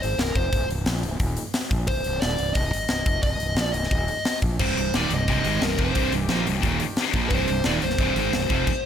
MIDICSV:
0, 0, Header, 1, 6, 480
1, 0, Start_track
1, 0, Key_signature, -3, "minor"
1, 0, Tempo, 339367
1, 747, Time_signature, 4, 2, 24, 8
1, 12527, End_track
2, 0, Start_track
2, 0, Title_t, "Lead electric guitar"
2, 0, Program_c, 0, 29
2, 25, Note_on_c, 0, 72, 85
2, 262, Note_on_c, 0, 70, 79
2, 274, Note_off_c, 0, 72, 0
2, 487, Note_off_c, 0, 70, 0
2, 506, Note_on_c, 0, 72, 78
2, 952, Note_off_c, 0, 72, 0
2, 2653, Note_on_c, 0, 72, 99
2, 3116, Note_off_c, 0, 72, 0
2, 3122, Note_on_c, 0, 74, 111
2, 3590, Note_off_c, 0, 74, 0
2, 3595, Note_on_c, 0, 75, 108
2, 4547, Note_off_c, 0, 75, 0
2, 4564, Note_on_c, 0, 75, 112
2, 5256, Note_off_c, 0, 75, 0
2, 5273, Note_on_c, 0, 75, 96
2, 6192, Note_off_c, 0, 75, 0
2, 6508, Note_on_c, 0, 72, 81
2, 6740, Note_off_c, 0, 72, 0
2, 6757, Note_on_c, 0, 72, 84
2, 6997, Note_off_c, 0, 72, 0
2, 6997, Note_on_c, 0, 74, 91
2, 7238, Note_off_c, 0, 74, 0
2, 7272, Note_on_c, 0, 75, 94
2, 7973, Note_on_c, 0, 70, 78
2, 7991, Note_off_c, 0, 75, 0
2, 8185, Note_on_c, 0, 72, 78
2, 8207, Note_off_c, 0, 70, 0
2, 8634, Note_off_c, 0, 72, 0
2, 10307, Note_on_c, 0, 72, 92
2, 10774, Note_off_c, 0, 72, 0
2, 10823, Note_on_c, 0, 74, 116
2, 10893, Note_off_c, 0, 74, 0
2, 11082, Note_on_c, 0, 72, 93
2, 12527, Note_off_c, 0, 72, 0
2, 12527, End_track
3, 0, Start_track
3, 0, Title_t, "String section"
3, 0, Program_c, 1, 48
3, 6495, Note_on_c, 1, 67, 86
3, 6515, Note_on_c, 1, 51, 81
3, 6517, Note_on_c, 1, 60, 77
3, 9368, Note_off_c, 1, 60, 0
3, 9420, Note_on_c, 1, 62, 75
3, 12208, Note_off_c, 1, 67, 0
3, 12218, Note_off_c, 1, 51, 0
3, 12254, Note_off_c, 1, 62, 0
3, 12527, End_track
4, 0, Start_track
4, 0, Title_t, "Distorted electric guitar"
4, 0, Program_c, 2, 30
4, 6512, Note_on_c, 2, 36, 94
4, 6529, Note_on_c, 2, 48, 92
4, 6530, Note_on_c, 2, 43, 89
4, 6737, Note_off_c, 2, 36, 0
4, 6749, Note_off_c, 2, 48, 0
4, 6750, Note_off_c, 2, 43, 0
4, 6754, Note_on_c, 2, 36, 51
4, 6765, Note_on_c, 2, 43, 67
4, 6941, Note_off_c, 2, 36, 0
4, 6947, Note_off_c, 2, 43, 0
4, 7011, Note_on_c, 2, 39, 84
4, 7020, Note_on_c, 2, 46, 95
4, 7024, Note_on_c, 2, 51, 104
4, 7231, Note_off_c, 2, 39, 0
4, 7235, Note_off_c, 2, 46, 0
4, 7238, Note_off_c, 2, 51, 0
4, 7245, Note_on_c, 2, 36, 62
4, 7247, Note_on_c, 2, 43, 72
4, 7428, Note_off_c, 2, 36, 0
4, 7428, Note_off_c, 2, 43, 0
4, 7472, Note_on_c, 2, 36, 79
4, 7480, Note_on_c, 2, 43, 90
4, 7481, Note_on_c, 2, 48, 95
4, 7696, Note_off_c, 2, 36, 0
4, 7702, Note_on_c, 2, 44, 81
4, 7706, Note_off_c, 2, 43, 0
4, 7706, Note_off_c, 2, 48, 0
4, 7713, Note_on_c, 2, 56, 103
4, 7715, Note_on_c, 2, 51, 84
4, 7937, Note_off_c, 2, 44, 0
4, 7943, Note_off_c, 2, 56, 0
4, 7944, Note_off_c, 2, 51, 0
4, 7952, Note_on_c, 2, 36, 65
4, 7960, Note_on_c, 2, 43, 74
4, 8142, Note_off_c, 2, 36, 0
4, 8146, Note_off_c, 2, 43, 0
4, 8170, Note_on_c, 2, 41, 83
4, 8180, Note_on_c, 2, 48, 85
4, 8183, Note_on_c, 2, 53, 90
4, 8412, Note_off_c, 2, 41, 0
4, 8417, Note_off_c, 2, 48, 0
4, 8419, Note_off_c, 2, 53, 0
4, 8420, Note_on_c, 2, 36, 100
4, 8429, Note_on_c, 2, 43, 104
4, 8434, Note_on_c, 2, 48, 96
4, 8658, Note_off_c, 2, 36, 0
4, 8662, Note_off_c, 2, 43, 0
4, 8665, Note_off_c, 2, 48, 0
4, 8678, Note_on_c, 2, 36, 55
4, 8688, Note_on_c, 2, 43, 66
4, 8866, Note_off_c, 2, 36, 0
4, 8871, Note_off_c, 2, 43, 0
4, 8915, Note_on_c, 2, 53, 89
4, 8919, Note_on_c, 2, 46, 83
4, 8919, Note_on_c, 2, 58, 98
4, 9145, Note_off_c, 2, 53, 0
4, 9147, Note_off_c, 2, 46, 0
4, 9147, Note_off_c, 2, 58, 0
4, 9168, Note_on_c, 2, 43, 72
4, 9169, Note_on_c, 2, 36, 69
4, 9351, Note_off_c, 2, 43, 0
4, 9352, Note_off_c, 2, 36, 0
4, 9408, Note_on_c, 2, 39, 85
4, 9413, Note_on_c, 2, 46, 87
4, 9421, Note_on_c, 2, 51, 84
4, 9632, Note_off_c, 2, 39, 0
4, 9635, Note_off_c, 2, 46, 0
4, 9639, Note_off_c, 2, 51, 0
4, 10124, Note_on_c, 2, 46, 93
4, 10130, Note_on_c, 2, 58, 107
4, 10132, Note_on_c, 2, 53, 80
4, 10348, Note_off_c, 2, 46, 0
4, 10354, Note_off_c, 2, 58, 0
4, 10354, Note_on_c, 2, 36, 98
4, 10355, Note_off_c, 2, 53, 0
4, 10370, Note_on_c, 2, 48, 105
4, 10371, Note_on_c, 2, 43, 116
4, 10576, Note_off_c, 2, 36, 0
4, 10588, Note_off_c, 2, 43, 0
4, 10593, Note_on_c, 2, 36, 52
4, 10594, Note_off_c, 2, 48, 0
4, 10605, Note_on_c, 2, 43, 65
4, 10784, Note_off_c, 2, 36, 0
4, 10790, Note_off_c, 2, 43, 0
4, 10831, Note_on_c, 2, 39, 88
4, 10835, Note_on_c, 2, 46, 94
4, 10845, Note_on_c, 2, 51, 109
4, 11064, Note_off_c, 2, 39, 0
4, 11066, Note_off_c, 2, 46, 0
4, 11071, Note_off_c, 2, 51, 0
4, 11075, Note_on_c, 2, 36, 62
4, 11083, Note_on_c, 2, 43, 72
4, 11265, Note_off_c, 2, 36, 0
4, 11269, Note_off_c, 2, 43, 0
4, 11317, Note_on_c, 2, 36, 84
4, 11321, Note_on_c, 2, 43, 91
4, 11322, Note_on_c, 2, 48, 87
4, 11534, Note_off_c, 2, 36, 0
4, 11539, Note_on_c, 2, 44, 86
4, 11547, Note_off_c, 2, 48, 0
4, 11548, Note_off_c, 2, 43, 0
4, 11553, Note_on_c, 2, 56, 99
4, 11555, Note_on_c, 2, 51, 86
4, 11777, Note_off_c, 2, 44, 0
4, 11784, Note_off_c, 2, 56, 0
4, 11785, Note_off_c, 2, 51, 0
4, 11795, Note_on_c, 2, 43, 83
4, 11800, Note_on_c, 2, 36, 64
4, 11984, Note_off_c, 2, 43, 0
4, 11987, Note_off_c, 2, 36, 0
4, 12013, Note_on_c, 2, 41, 87
4, 12034, Note_on_c, 2, 48, 95
4, 12034, Note_on_c, 2, 53, 90
4, 12253, Note_off_c, 2, 41, 0
4, 12263, Note_off_c, 2, 48, 0
4, 12263, Note_off_c, 2, 53, 0
4, 12527, End_track
5, 0, Start_track
5, 0, Title_t, "Fingered electric bass"
5, 0, Program_c, 3, 33
5, 50, Note_on_c, 3, 32, 90
5, 254, Note_off_c, 3, 32, 0
5, 263, Note_on_c, 3, 24, 85
5, 488, Note_off_c, 3, 24, 0
5, 495, Note_on_c, 3, 29, 88
5, 724, Note_off_c, 3, 29, 0
5, 753, Note_on_c, 3, 24, 84
5, 973, Note_off_c, 3, 24, 0
5, 981, Note_on_c, 3, 24, 81
5, 1206, Note_off_c, 3, 24, 0
5, 1222, Note_on_c, 3, 34, 91
5, 1446, Note_off_c, 3, 34, 0
5, 1463, Note_on_c, 3, 24, 78
5, 1687, Note_off_c, 3, 24, 0
5, 1694, Note_on_c, 3, 27, 94
5, 1921, Note_off_c, 3, 27, 0
5, 2421, Note_on_c, 3, 34, 79
5, 2645, Note_off_c, 3, 34, 0
5, 2664, Note_on_c, 3, 24, 92
5, 2886, Note_off_c, 3, 24, 0
5, 2915, Note_on_c, 3, 24, 90
5, 3132, Note_off_c, 3, 24, 0
5, 3156, Note_on_c, 3, 27, 92
5, 3372, Note_off_c, 3, 27, 0
5, 3393, Note_on_c, 3, 24, 86
5, 3608, Note_off_c, 3, 24, 0
5, 3616, Note_on_c, 3, 24, 93
5, 3842, Note_off_c, 3, 24, 0
5, 3878, Note_on_c, 3, 32, 83
5, 4093, Note_off_c, 3, 32, 0
5, 4107, Note_on_c, 3, 24, 76
5, 4323, Note_off_c, 3, 24, 0
5, 4332, Note_on_c, 3, 29, 86
5, 4559, Note_off_c, 3, 29, 0
5, 4571, Note_on_c, 3, 24, 93
5, 4799, Note_off_c, 3, 24, 0
5, 4808, Note_on_c, 3, 24, 77
5, 5020, Note_off_c, 3, 24, 0
5, 5028, Note_on_c, 3, 34, 92
5, 5267, Note_off_c, 3, 34, 0
5, 5297, Note_on_c, 3, 24, 76
5, 5523, Note_off_c, 3, 24, 0
5, 5540, Note_on_c, 3, 27, 98
5, 5764, Note_off_c, 3, 27, 0
5, 6258, Note_on_c, 3, 34, 76
5, 6484, Note_off_c, 3, 34, 0
5, 6511, Note_on_c, 3, 24, 89
5, 6731, Note_off_c, 3, 24, 0
5, 6756, Note_on_c, 3, 24, 83
5, 6974, Note_off_c, 3, 24, 0
5, 7000, Note_on_c, 3, 27, 95
5, 7211, Note_off_c, 3, 27, 0
5, 7220, Note_on_c, 3, 24, 79
5, 7446, Note_off_c, 3, 24, 0
5, 7477, Note_on_c, 3, 24, 102
5, 7695, Note_off_c, 3, 24, 0
5, 7715, Note_on_c, 3, 32, 92
5, 7935, Note_off_c, 3, 32, 0
5, 7954, Note_on_c, 3, 24, 82
5, 8175, Note_off_c, 3, 24, 0
5, 8189, Note_on_c, 3, 29, 87
5, 8412, Note_off_c, 3, 29, 0
5, 8429, Note_on_c, 3, 24, 92
5, 8652, Note_off_c, 3, 24, 0
5, 8669, Note_on_c, 3, 24, 81
5, 8881, Note_off_c, 3, 24, 0
5, 8889, Note_on_c, 3, 34, 98
5, 9122, Note_off_c, 3, 34, 0
5, 9146, Note_on_c, 3, 24, 83
5, 9368, Note_off_c, 3, 24, 0
5, 9376, Note_on_c, 3, 27, 103
5, 9606, Note_off_c, 3, 27, 0
5, 10097, Note_on_c, 3, 34, 98
5, 10327, Note_off_c, 3, 34, 0
5, 10335, Note_on_c, 3, 24, 94
5, 10566, Note_off_c, 3, 24, 0
5, 10591, Note_on_c, 3, 24, 82
5, 10814, Note_off_c, 3, 24, 0
5, 10837, Note_on_c, 3, 27, 93
5, 11057, Note_off_c, 3, 27, 0
5, 11066, Note_on_c, 3, 24, 80
5, 11286, Note_off_c, 3, 24, 0
5, 11295, Note_on_c, 3, 24, 96
5, 11525, Note_off_c, 3, 24, 0
5, 11540, Note_on_c, 3, 32, 93
5, 11768, Note_off_c, 3, 32, 0
5, 11787, Note_on_c, 3, 24, 86
5, 12011, Note_off_c, 3, 24, 0
5, 12027, Note_on_c, 3, 29, 84
5, 12251, Note_off_c, 3, 29, 0
5, 12527, End_track
6, 0, Start_track
6, 0, Title_t, "Drums"
6, 43, Note_on_c, 9, 46, 60
6, 184, Note_off_c, 9, 46, 0
6, 269, Note_on_c, 9, 46, 76
6, 273, Note_on_c, 9, 38, 106
6, 410, Note_off_c, 9, 46, 0
6, 414, Note_off_c, 9, 38, 0
6, 499, Note_on_c, 9, 46, 55
6, 502, Note_on_c, 9, 36, 99
6, 641, Note_off_c, 9, 46, 0
6, 644, Note_off_c, 9, 36, 0
6, 744, Note_on_c, 9, 36, 98
6, 746, Note_on_c, 9, 46, 80
6, 886, Note_off_c, 9, 36, 0
6, 887, Note_off_c, 9, 46, 0
6, 996, Note_on_c, 9, 46, 52
6, 1138, Note_off_c, 9, 46, 0
6, 1215, Note_on_c, 9, 46, 72
6, 1219, Note_on_c, 9, 38, 111
6, 1356, Note_off_c, 9, 46, 0
6, 1361, Note_off_c, 9, 38, 0
6, 1460, Note_on_c, 9, 46, 60
6, 1602, Note_off_c, 9, 46, 0
6, 1692, Note_on_c, 9, 46, 69
6, 1697, Note_on_c, 9, 36, 89
6, 1834, Note_off_c, 9, 46, 0
6, 1839, Note_off_c, 9, 36, 0
6, 1933, Note_on_c, 9, 46, 61
6, 2074, Note_off_c, 9, 46, 0
6, 2174, Note_on_c, 9, 46, 69
6, 2178, Note_on_c, 9, 38, 121
6, 2316, Note_off_c, 9, 46, 0
6, 2320, Note_off_c, 9, 38, 0
6, 2418, Note_on_c, 9, 36, 95
6, 2420, Note_on_c, 9, 46, 53
6, 2559, Note_off_c, 9, 36, 0
6, 2562, Note_off_c, 9, 46, 0
6, 2648, Note_on_c, 9, 46, 82
6, 2657, Note_on_c, 9, 36, 107
6, 2790, Note_off_c, 9, 46, 0
6, 2798, Note_off_c, 9, 36, 0
6, 2890, Note_on_c, 9, 46, 53
6, 3031, Note_off_c, 9, 46, 0
6, 3137, Note_on_c, 9, 46, 82
6, 3142, Note_on_c, 9, 38, 111
6, 3279, Note_off_c, 9, 46, 0
6, 3283, Note_off_c, 9, 38, 0
6, 3373, Note_on_c, 9, 46, 68
6, 3514, Note_off_c, 9, 46, 0
6, 3607, Note_on_c, 9, 46, 82
6, 3612, Note_on_c, 9, 36, 106
6, 3748, Note_off_c, 9, 46, 0
6, 3753, Note_off_c, 9, 36, 0
6, 3866, Note_on_c, 9, 46, 68
6, 4008, Note_off_c, 9, 46, 0
6, 4081, Note_on_c, 9, 46, 88
6, 4085, Note_on_c, 9, 38, 112
6, 4223, Note_off_c, 9, 46, 0
6, 4227, Note_off_c, 9, 38, 0
6, 4328, Note_on_c, 9, 46, 63
6, 4329, Note_on_c, 9, 36, 106
6, 4469, Note_off_c, 9, 46, 0
6, 4471, Note_off_c, 9, 36, 0
6, 4565, Note_on_c, 9, 46, 72
6, 4569, Note_on_c, 9, 36, 95
6, 4706, Note_off_c, 9, 46, 0
6, 4711, Note_off_c, 9, 36, 0
6, 4809, Note_on_c, 9, 46, 56
6, 4950, Note_off_c, 9, 46, 0
6, 5041, Note_on_c, 9, 46, 75
6, 5046, Note_on_c, 9, 38, 107
6, 5183, Note_off_c, 9, 46, 0
6, 5187, Note_off_c, 9, 38, 0
6, 5289, Note_on_c, 9, 46, 55
6, 5425, Note_on_c, 9, 38, 28
6, 5431, Note_off_c, 9, 46, 0
6, 5533, Note_on_c, 9, 36, 108
6, 5537, Note_on_c, 9, 46, 72
6, 5567, Note_off_c, 9, 38, 0
6, 5674, Note_off_c, 9, 36, 0
6, 5679, Note_off_c, 9, 46, 0
6, 5772, Note_on_c, 9, 46, 53
6, 5913, Note_off_c, 9, 46, 0
6, 6013, Note_on_c, 9, 46, 75
6, 6018, Note_on_c, 9, 38, 104
6, 6155, Note_off_c, 9, 46, 0
6, 6159, Note_off_c, 9, 38, 0
6, 6250, Note_on_c, 9, 46, 55
6, 6256, Note_on_c, 9, 36, 99
6, 6392, Note_off_c, 9, 46, 0
6, 6398, Note_off_c, 9, 36, 0
6, 6497, Note_on_c, 9, 49, 98
6, 6499, Note_on_c, 9, 36, 107
6, 6638, Note_off_c, 9, 49, 0
6, 6641, Note_off_c, 9, 36, 0
6, 6754, Note_on_c, 9, 46, 54
6, 6895, Note_off_c, 9, 46, 0
6, 6985, Note_on_c, 9, 46, 76
6, 6989, Note_on_c, 9, 38, 115
6, 7126, Note_off_c, 9, 46, 0
6, 7131, Note_off_c, 9, 38, 0
6, 7221, Note_on_c, 9, 46, 62
6, 7363, Note_off_c, 9, 46, 0
6, 7468, Note_on_c, 9, 36, 94
6, 7475, Note_on_c, 9, 46, 76
6, 7609, Note_off_c, 9, 36, 0
6, 7617, Note_off_c, 9, 46, 0
6, 7701, Note_on_c, 9, 46, 63
6, 7843, Note_off_c, 9, 46, 0
6, 7946, Note_on_c, 9, 46, 91
6, 7950, Note_on_c, 9, 38, 116
6, 8087, Note_off_c, 9, 46, 0
6, 8091, Note_off_c, 9, 38, 0
6, 8185, Note_on_c, 9, 36, 95
6, 8187, Note_on_c, 9, 46, 61
6, 8326, Note_off_c, 9, 36, 0
6, 8329, Note_off_c, 9, 46, 0
6, 8416, Note_on_c, 9, 46, 86
6, 8423, Note_on_c, 9, 36, 107
6, 8558, Note_off_c, 9, 46, 0
6, 8565, Note_off_c, 9, 36, 0
6, 8658, Note_on_c, 9, 46, 63
6, 8800, Note_off_c, 9, 46, 0
6, 8892, Note_on_c, 9, 46, 80
6, 8896, Note_on_c, 9, 38, 111
6, 9034, Note_off_c, 9, 46, 0
6, 9038, Note_off_c, 9, 38, 0
6, 9148, Note_on_c, 9, 46, 64
6, 9289, Note_off_c, 9, 46, 0
6, 9381, Note_on_c, 9, 36, 97
6, 9382, Note_on_c, 9, 46, 69
6, 9523, Note_off_c, 9, 36, 0
6, 9524, Note_off_c, 9, 46, 0
6, 9615, Note_on_c, 9, 46, 61
6, 9757, Note_off_c, 9, 46, 0
6, 9853, Note_on_c, 9, 46, 70
6, 9858, Note_on_c, 9, 38, 110
6, 9995, Note_off_c, 9, 46, 0
6, 9999, Note_off_c, 9, 38, 0
6, 10090, Note_on_c, 9, 46, 56
6, 10096, Note_on_c, 9, 36, 96
6, 10231, Note_off_c, 9, 46, 0
6, 10237, Note_off_c, 9, 36, 0
6, 10330, Note_on_c, 9, 46, 77
6, 10335, Note_on_c, 9, 36, 105
6, 10472, Note_off_c, 9, 46, 0
6, 10477, Note_off_c, 9, 36, 0
6, 10574, Note_on_c, 9, 46, 57
6, 10716, Note_off_c, 9, 46, 0
6, 10805, Note_on_c, 9, 46, 74
6, 10809, Note_on_c, 9, 38, 106
6, 10946, Note_off_c, 9, 46, 0
6, 10950, Note_off_c, 9, 38, 0
6, 11058, Note_on_c, 9, 46, 55
6, 11173, Note_on_c, 9, 38, 32
6, 11199, Note_off_c, 9, 46, 0
6, 11293, Note_on_c, 9, 46, 82
6, 11294, Note_on_c, 9, 36, 97
6, 11315, Note_off_c, 9, 38, 0
6, 11435, Note_off_c, 9, 46, 0
6, 11436, Note_off_c, 9, 36, 0
6, 11543, Note_on_c, 9, 46, 62
6, 11685, Note_off_c, 9, 46, 0
6, 11785, Note_on_c, 9, 46, 78
6, 11789, Note_on_c, 9, 38, 113
6, 11926, Note_off_c, 9, 46, 0
6, 11930, Note_off_c, 9, 38, 0
6, 12023, Note_on_c, 9, 36, 97
6, 12026, Note_on_c, 9, 46, 57
6, 12165, Note_off_c, 9, 36, 0
6, 12168, Note_off_c, 9, 46, 0
6, 12265, Note_on_c, 9, 36, 109
6, 12267, Note_on_c, 9, 57, 101
6, 12406, Note_off_c, 9, 36, 0
6, 12409, Note_off_c, 9, 57, 0
6, 12527, End_track
0, 0, End_of_file